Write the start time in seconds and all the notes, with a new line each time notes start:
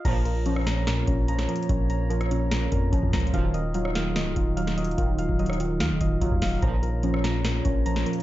0.05 A#1 A#2 C#3 F3 A#3 F4 C#5 A#5, kick, closed hi-hat, crash
0.25 A#2 A#4, closed hi-hat
0.46 F3 C#4, closed hi-hat
0.56 cross-stick
0.66 A#2 A#5, snare, closed hi-hat
0.87 A#2 A#4, snare, closed hi-hat
1.07 A#1 A#2 C#4, kick, closed hi-hat
1.28 F3 A#5, closed hi-hat
1.39 snare
1.49 F3 A#4, closed hi-hat
1.56 closed hi-hat
1.63 closed hi-hat
1.69 A#1 A#2 C#4, kick, closed hi-hat
1.90 A#2 A#5, closed hi-hat
2.10 F3 A#4, closed hi-hat
2.21 cross-stick, closed hi-hat
2.31 A#2 C#4, closed hi-hat
2.51 A#2 A#5, snare, closed hi-hat
2.72 F2 A#2 A#4, kick, closed hi-hat
2.92 A#1 F3 C#4, kick, closed hi-hat
3.03 F2, kick
3.13 C#2 F3 A#5, kick, snare, closed hi-hat
3.20 closed hi-hat
3.27 closed hi-hat
3.34 D#1 F#2 A#2 D#3 F3 D#4 F5, kick, closed hi-hat
3.54 D#3 D#5, closed hi-hat
3.74 F#3 F4, closed hi-hat
3.85 cross-stick
3.95 D#3 F5, snare, closed hi-hat
4.16 C#1 D#3 D#5, snare, closed hi-hat
4.36 D#1 D#3 F4, kick, closed hi-hat
4.57 F#3 F5, closed hi-hat
4.67 snare
4.78 F#3 D#5, closed hi-hat
4.84 closed hi-hat
4.91 closed hi-hat
4.98 D#1 D#3 F4, kick, closed hi-hat
5.18 D#3 F5, closed hi-hat
5.29 D#1, kick
5.39 F#3 D#5, closed hi-hat
5.46 cross-stick, closed hi-hat
5.53 closed hi-hat
5.60 D#3 F4, closed hi-hat
5.80 D#2 D#3 F5, snare, closed hi-hat
5.91 D#1
6.01 D#1 D#3 D#5, kick, closed hi-hat
6.21 F#1 F#3 F4, kick, closed hi-hat
6.32 D#2, kick
6.42 D#1 F#3 F5, kick, snare, open hi-hat
6.62 A#1 A#2 C#3 F3 A#3 C#5 A#5, kick, closed hi-hat
6.83 A#2 A#4, closed hi-hat
7.03 F3 C#4, closed hi-hat
7.14 cross-stick
7.24 A#2 A#5, snare, closed hi-hat
7.45 A#2 A#4, snare, closed hi-hat
7.65 A#1 A#2 C#4, kick, closed hi-hat
7.86 F3 A#5, closed hi-hat
7.96 snare
8.06 F3 A#4, closed hi-hat
8.13 closed hi-hat